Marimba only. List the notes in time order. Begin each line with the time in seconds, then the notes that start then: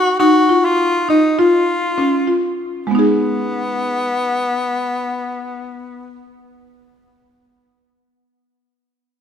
0.20 D#4
0.49 F4
1.09 D#4
1.39 F4
1.98 C#4
2.27 F4
2.87 G#3
2.91 B3 D#4
2.99 G#4